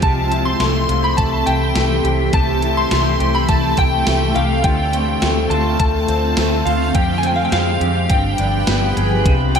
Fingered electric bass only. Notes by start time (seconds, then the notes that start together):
0.03 C2
0.60 C2
0.89 C2
1.18 C2
1.47 C2
1.76 C2
2.04 C2
2.33 C2
2.91 C2
3.20 C2
3.49 C2
3.78 C2
4.07 C2
4.36 C2
4.64 D2
5.22 D2
5.50 D2
5.80 D2
6.08 D2
6.38 D2
6.66 D2
6.95 F2
7.52 F2
7.81 F2
8.10 G1
8.39 G1
8.68 G1
8.97 G1
9.26 C2